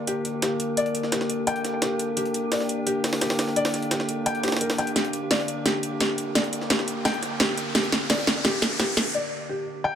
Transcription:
0.00 9.10 D3 medium
0.00 9.10 A#3 medium
0.00 9.10 G4 medium
0.07 0.20 G4 loud
0.07 closed hi-hat medium
0.25 closed hi-hat medium
0.42 0.51 G4 loud
0.42 snare loud
0.42 closed hi-hat medium
0.60 closed hi-hat medium
0.77 0.85 D5 loud
0.77 closed hi-hat medium
0.86 closed hi-hat soft
0.95 closed hi-hat medium
1.03 snare soft
1.12 1.24 G4 medium
1.12 snare loud
1.12 closed hi-hat medium
1.21 snare medium
1.30 closed hi-hat medium
1.47 1.59 G5 loud
1.47 closed hi-hat medium
1.56 closed hi-hat soft
1.65 snare soft
1.65 closed hi-hat medium
1.82 1.90 G4 loud
1.82 snare loud
1.82 closed hi-hat medium
1.99 closed hi-hat medium
2.17 2.25 G4 loud
2.17 closed hi-hat medium
2.26 closed hi-hat soft
2.34 closed hi-hat medium
2.52 2.60 D5 medium
2.52 snare loud
2.52 closed hi-hat medium
2.52 open hi-hat medium
2.60 snare soft
2.69 closed hi-hat medium
2.87 2.99 G4 loud
2.87 closed hi-hat medium
3.04 snare loud
3.04 closed hi-hat medium
3.04 open hi-hat medium
3.13 snare loud
3.13 open hi-hat medium
3.21 3.30 G4 loud
3.21 snare loud
3.21 closed hi-hat medium
3.21 open hi-hat medium
3.30 snare loud
3.30 open hi-hat medium
3.39 snare loud
3.39 closed hi-hat medium
3.39 open hi-hat medium
3.48 snare soft
3.56 3.65 D5 loud
3.56 closed hi-hat medium
3.65 snare loud
3.65 open hi-hat medium
3.74 snare soft
3.74 closed hi-hat medium
3.82 closed hi-hat medium
3.91 4.04 G4 medium
3.91 snare loud
3.91 closed hi-hat medium
4.00 snare medium
4.09 closed hi-hat medium
4.26 4.38 G5 loud
4.26 closed hi-hat medium
4.35 closed hi-hat soft
4.43 4.48 G4 loud
4.43 snare medium
4.43 closed hi-hat medium
4.43 open hi-hat medium
4.48 snare medium
4.48 open hi-hat medium
4.52 snare medium
4.52 open hi-hat medium
4.57 snare medium
4.57 open hi-hat medium
4.61 4.69 A#4 medium
4.61 closed hi-hat medium
4.70 snare loud
4.70 open hi-hat medium
4.78 4.87 G5 medium
4.78 snare soft
4.78 closed hi-hat medium
4.87 closed hi-hat soft
4.87 closed hi-hat medium
4.96 5.04 G4 loud
4.96 snare soft
4.96 closed hi-hat medium
4.96 riser medium
5.05 closed hi-hat soft
5.13 closed hi-hat medium
5.31 5.39 D5 medium
5.31 snare medium
5.31 snare loud
5.31 closed hi-hat medium
5.31 open hi-hat medium
5.40 snare soft
5.48 closed hi-hat medium
5.66 5.78 G4 loud
5.66 snare medium
5.66 closed hi-hat medium
5.83 closed hi-hat medium
6.00 6.09 G4 loud
6.00 snare loud
6.00 snare medium
6.00 closed hi-hat medium
6.18 closed hi-hat medium
6.35 6.40 D5 medium
6.35 snare medium
6.35 closed hi-hat medium
6.44 closed hi-hat soft
6.53 closed hi-hat medium
6.61 snare soft
6.70 6.83 G4 medium
6.70 snare loud
6.70 snare medium
6.70 closed hi-hat medium
6.79 snare medium
6.88 closed hi-hat medium
7.05 7.17 G5 loud
7.05 snare medium
7.05 closed hi-hat medium
7.14 closed hi-hat soft
7.22 snare soft
7.22 closed hi-hat medium
7.40 7.48 G4 loud
7.40 snare loud
7.40 snare medium
7.40 closed hi-hat medium
7.57 closed hi-hat medium
7.75 7.83 G4 loud
7.75 snare medium
7.75 closed hi-hat medium
7.75 closed hi-hat loud
7.84 closed hi-hat soft
7.92 snare medium
7.92 closed hi-hat medium
8.10 8.18 D5 medium
8.10 snare loud
8.10 snare medium
8.10 closed hi-hat loud
8.10 open hi-hat medium
8.19 snare soft
8.27 snare medium
8.27 closed hi-hat medium
8.45 8.57 G4 loud
8.45 snare medium
8.45 closed hi-hat loud
8.45 closed hi-hat medium
8.62 snare medium
8.62 closed hi-hat medium
8.79 8.88 G4 loud
8.79 snare medium
8.79 snare loud
8.79 closed hi-hat medium
8.97 snare medium
8.97 closed hi-hat medium
9.14 9.19 D5 medium
9.49 9.62 G4 medium
9.84 9.95 G5 loud

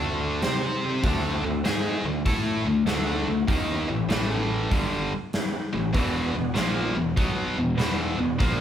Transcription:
0.00 0.39 D2 medium
0.00 0.42 D3 medium
0.00 0.26 A3 medium
0.00 0.42 A3 medium
0.00 0.26 C4 medium
0.00 0.42 D4 loud
0.00 0.26 E4 medium
0.00 0.26 F#4 medium
0.41 0.99 C3 medium
0.41 0.72 G3 medium
0.41 0.72 C4 medium
0.41 1.03 C4 medium
0.41 0.72 G4 medium
0.41 1.03 G4 medium
0.41 0.72 C5 medium
0.41 1.03 C5 medium
0.41 snare loud
0.41 open hi-hat soft
0.83 0.98 G3 medium
0.83 0.98 C4 medium
0.83 0.98 G4 medium
0.83 0.98 A4 medium
1.03 1.42 D2 medium
1.03 1.43 D3 medium
1.03 2.03 A3 medium
1.03 1.44 A3 medium
1.03 2.03 C4 medium
1.03 1.44 D4 loud
1.03 2.03 E4 medium
1.03 2.03 F#4 medium
1.03 kick loud
1.03 open hi-hat soft
1.44 1.63 D2 medium
1.44 1.61 D3 medium
1.44 1.61 A3 medium
1.64 2.02 G#2 medium
1.64 2.04 G#3 medium
1.64 2.05 D#4 medium
1.64 2.05 G#4 loud
1.64 snare loud
1.64 open hi-hat soft
2.04 2.24 D2 medium
2.04 2.22 D3 medium
2.04 2.22 A3 medium
2.26 2.64 A2 medium
2.26 2.65 A3 medium
2.26 2.66 E4 loud
2.26 2.66 A4 loud
2.26 kick medium
2.26 open hi-hat soft
2.64 2.85 D2 medium
2.64 2.83 D3 medium
2.64 2.83 A3 medium
2.85 3.24 D2 medium
2.85 3.27 D3 medium
2.85 3.16 A3 medium
2.85 3.27 A3 medium
2.85 3.16 C4 medium
2.85 3.27 D4 loud
2.85 3.16 E4 medium
2.85 3.17 A4 medium
2.85 snare loud
2.85 open hi-hat soft
3.27 3.46 D2 medium
3.27 3.44 D3 medium
3.27 3.44 A3 medium
3.27 3.43 A3 medium
3.27 3.43 C4 medium
3.27 3.43 E4 medium
3.27 3.43 F#4 medium
3.48 3.87 D#2 medium
3.48 3.88 D#3 medium
3.48 3.88 A#3 medium
3.48 4.49 B3 medium
3.48 4.49 C#4 medium
3.48 3.88 D#4 medium
3.48 4.49 E4 medium
3.48 4.49 G4 medium
3.48 kick loud
3.48 open hi-hat soft
3.88 4.08 A1 medium
3.88 4.05 A2 medium
3.88 4.06 E3 medium
4.09 4.67 A1 medium
4.09 4.70 A2 medium
4.09 4.70 E3 medium
4.09 4.71 A3 loud
4.09 snare loud
4.09 open hi-hat soft
4.71 5.09 G1 medium
4.71 5.11 G2 medium
4.71 5.11 D3 medium
4.71 5.11 G3 medium
4.71 kick medium
4.71 open hi-hat soft
5.33 5.64 B3 medium
5.33 5.64 C#4 medium
5.33 5.64 E4 medium
5.33 5.64 G4 medium
5.33 snare loud
5.33 open hi-hat soft
5.73 5.93 A1 medium
5.73 5.90 A2 medium
5.73 5.90 E3 medium
5.73 5.89 B3 medium
5.73 5.89 C#4 medium
5.73 5.89 E4 medium
5.73 5.89 G4 medium
5.92 6.32 E1 medium
5.92 6.33 E2 medium
5.92 6.34 B2 medium
5.92 6.34 E3 medium
5.92 6.93 B3 medium
5.92 6.93 D4 medium
5.92 6.93 F#4 medium
5.92 6.93 G#4 medium
5.92 kick medium
5.92 open hi-hat soft
6.34 6.54 E1 medium
6.34 6.51 E2 medium
6.34 6.51 B2 medium
6.55 6.93 A#1 medium
6.55 6.95 A#2 medium
6.55 6.95 F3 medium
6.55 6.95 A#3 loud
6.55 snare loud
6.55 open hi-hat soft
6.96 7.16 E1 medium
6.96 7.12 E2 medium
6.96 7.13 B2 medium
7.17 7.55 B1 medium
7.17 7.57 B2 medium
7.17 7.57 F#3 medium
7.17 7.57 B3 loud
7.17 kick loud
7.17 open hi-hat soft
7.57 7.76 E1 medium
7.57 7.74 E2 medium
7.57 7.75 B2 medium
7.76 8.16 E1 medium
7.76 8.17 E2 medium
7.76 8.18 B2 medium
7.76 8.18 E3 medium
7.76 8.07 B3 medium
7.76 8.07 D4 medium
7.76 8.08 F#4 medium
7.76 8.07 B4 medium
7.76 open hi-hat soft
7.80 snare loud
8.17 8.38 E1 medium
8.17 8.35 E2 medium
8.17 8.35 B2 medium
8.17 8.33 B3 medium
8.17 8.33 D4 medium
8.17 8.33 F#4 medium
8.17 8.33 G#4 medium
8.36 8.61 A#2 medium
8.36 8.61 F3 medium
8.36 8.61 A#3 medium
8.36 8.61 B3 medium
8.36 8.61 D4 medium
8.36 8.61 F#4 medium
8.36 8.61 B4 medium
8.40 8.61 A#1 medium
8.40 kick loud
8.40 open hi-hat soft

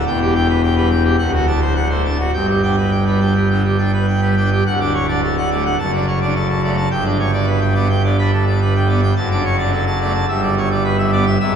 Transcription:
0.07 1.15 E1 medium
0.07 1.15 E2 medium
0.07 0.19 G5 loud
0.21 0.33 G4 medium
0.35 0.47 G5 medium
0.50 0.62 B4 medium
0.63 0.75 G5 medium
0.76 0.89 G3 medium
0.76 0.89 B4 medium
0.91 1.03 G5 medium
1.04 1.16 G4 medium
1.18 2.29 D1 medium
1.18 2.29 D2 medium
1.18 1.31 F#5 medium
1.33 1.45 F#4 medium
1.48 1.60 D4 medium
1.48 1.60 A5 medium
1.62 1.74 C5 medium
1.75 1.88 F#5 medium
1.90 2.02 A3 medium
1.90 2.02 C5 medium
2.05 2.17 D4 medium
2.05 2.17 A5 medium
2.19 2.31 F#4 medium
2.33 4.61 G1 medium
2.33 4.61 G2 medium
2.33 2.46 G5 medium
2.49 2.61 G4 medium
2.63 2.76 D4 medium
2.63 2.76 G5 medium
2.78 2.90 B4 medium
2.91 3.04 G5 medium
3.07 3.19 G3 medium
3.07 3.19 B4 medium
3.21 3.33 D4 medium
3.21 3.33 G5 medium
3.35 3.48 G4 medium
3.50 3.62 D3 medium
3.50 3.62 G5 medium
3.65 3.77 G4 medium
3.78 3.91 D4 medium
3.78 3.91 G5 medium
3.93 4.06 B4 soft
4.08 4.20 G5 medium
4.22 4.35 G3 medium
4.22 4.35 B4 medium
4.37 4.49 D4 medium
4.37 4.50 G5 medium
4.52 4.64 G4 medium
4.66 5.75 D1 medium
4.66 5.75 D2 medium
4.66 4.79 F#5 medium
4.80 4.92 D4 medium
4.80 4.93 D5 medium
4.94 5.06 C#5 medium
5.08 5.21 D4 medium
5.08 5.21 D5 medium
5.23 5.35 A4 medium
5.38 5.49 F#5 medium
5.51 5.63 A3 medium
5.51 5.63 D5 medium
5.65 5.77 F#5 medium
5.79 6.88 F#1 medium
5.79 6.88 F#2 medium
5.79 5.91 A5 medium
5.93 6.05 D4 medium
5.93 6.05 D5 medium
6.08 6.19 C#5 medium
6.21 6.34 D4 soft
6.21 6.34 D5 medium
6.35 6.47 A4 medium
6.50 6.62 A5 medium
6.64 6.76 A3 medium
6.64 6.76 D5 medium
6.77 6.89 A5 medium
6.91 9.12 G1 medium
6.91 9.12 G2 medium
6.91 7.03 G5 medium
7.05 7.17 D4 medium
7.05 7.17 D5 medium
7.19 7.31 C#5 medium
7.33 7.45 D4 medium
7.33 7.46 D5 medium
7.47 7.60 B4 medium
7.61 7.74 G5 medium
7.75 7.88 B3 medium
7.75 7.88 D5 medium
7.90 8.02 G5 medium
8.04 8.17 D3 medium
8.04 8.17 D5 medium
8.19 8.31 D4 medium
8.19 8.31 B4 medium
8.33 8.45 A4 medium
8.48 8.60 D4 medium
8.48 8.60 D5 medium
8.62 8.74 B4 medium
8.76 8.87 G5 medium
8.88 9.01 B3 medium
8.88 9.01 D5 medium
9.03 9.14 G5 medium
9.16 10.25 F#1 medium
9.16 10.25 F#2 medium
9.16 9.29 A5 medium
9.31 9.43 D4 medium
9.31 9.43 D5 medium
9.45 9.56 C#5 medium
9.58 9.71 D4 medium
9.58 9.71 D5 medium
9.72 9.85 A4 medium
9.87 9.99 A5 medium
10.01 10.13 A3 medium
10.01 10.13 D5 medium
10.14 10.26 A5 medium
10.28 11.37 G1 medium
10.28 11.37 G2 medium
10.28 10.41 E5 medium
10.43 10.55 D5 medium
10.58 10.69 C#5 medium
10.71 10.83 D5 medium
10.84 10.97 B4 medium
10.98 11.11 E5 medium
11.12 11.25 B3 medium
11.12 11.25 D5 medium
11.27 11.38 E5 medium
11.40 11.56 G#1 medium
11.40 11.56 G#2 medium
11.40 11.52 E5 medium

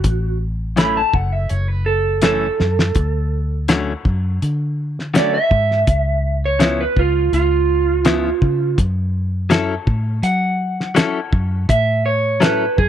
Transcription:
0.00 0.38 F#4 loud
0.00 closed hi-hat medium
0.04 1.03 A1 medium
0.04 kick loud
0.76 1.00 F#2 medium
0.76 1.00 E3 medium
0.76 1.01 A3 medium
0.76 1.01 C#4 medium
0.76 0.97 B5 medium
0.76 snare loud
0.76 closed hi-hat medium
0.97 1.15 A5 medium
1.14 1.47 F#1 medium
1.14 1.32 F#5 medium
1.14 kick medium
1.32 1.50 E5 medium
1.49 2.49 F#1 medium
1.49 1.68 C#5 loud
1.49 closed hi-hat medium
1.68 1.86 B4 medium
1.86 2.22 A4 medium
2.22 2.46 F#2 medium
2.22 2.46 E3 medium
2.22 2.46 A3 medium
2.22 2.47 C#4 medium
2.22 3.65 A4 loud
2.22 snare loud
2.22 closed hi-hat medium
2.60 2.93 F#2 medium
2.60 snare medium
2.79 snare medium
2.95 3.94 D2 medium
2.95 kick loud
2.95 closed hi-hat medium
3.68 3.92 D3 medium
3.68 3.92 F#3 medium
3.68 3.92 A3 medium
3.68 3.92 C#4 medium
3.68 snare loud
3.68 closed hi-hat medium
4.05 4.38 F#2 medium
4.05 kick medium
4.42 5.40 D3 medium
4.42 closed hi-hat medium
4.99 snare soft
5.14 5.37 D3 medium
5.14 5.37 F#3 medium
5.14 5.38 A3 medium
5.14 5.38 C#4 medium
5.14 5.34 D5 loud
5.14 snare loud
5.14 closed hi-hat medium
5.34 6.40 E5 medium
5.51 5.84 G#2 medium
5.51 kick medium
5.71 snare soft
5.87 6.85 C#2 medium
5.87 kick loud
5.87 closed hi-hat medium
6.46 6.80 C#5 medium
6.60 6.83 C#3 medium
6.60 6.83 F3 medium
6.60 6.83 B3 medium
6.60 6.84 E4 medium
6.60 snare loud
6.60 closed hi-hat medium
6.81 6.97 B4 medium
6.97 7.29 C#2 medium
6.97 7.33 F4 loud
6.97 kick medium
7.33 8.31 C#2 medium
7.33 8.75 F4 loud
7.33 closed hi-hat medium
8.05 8.28 C#3 medium
8.05 8.29 F3 medium
8.05 8.29 B3 medium
8.05 8.29 E4 medium
8.05 snare loud
8.05 closed hi-hat medium
8.42 8.75 C#3 medium
8.42 kick medium
8.78 9.77 F#2 medium
8.78 kick loud
8.78 closed hi-hat medium
9.50 9.73 F#3 medium
9.50 9.74 C#4 medium
9.50 9.74 E4 loud
9.50 9.74 A4 loud
9.50 snare loud
9.50 closed hi-hat medium
9.87 10.20 A2 medium
9.87 kick medium
10.23 11.21 F#3 medium
10.23 11.66 F#5 loud
10.23 closed hi-hat medium
10.80 snare soft
10.95 11.19 F#3 medium
10.95 11.19 C#4 medium
10.95 11.19 E4 medium
10.95 11.20 A4 medium
10.95 snare loud
10.95 closed hi-hat medium
11.33 11.66 F#2 medium
11.33 kick medium
11.69 12.67 A2 medium
11.69 12.05 E5 medium
11.69 kick loud
11.69 closed hi-hat medium
12.06 12.41 C#5 loud
12.40 12.64 F#3 medium
12.40 12.64 C#4 medium
12.40 12.65 E4 medium
12.40 12.65 A4 medium
12.40 12.78 B4 medium
12.40 snare loud
12.40 closed hi-hat medium
12.78 12.89 F#2 medium
12.78 12.89 G#4 loud
12.78 kick medium

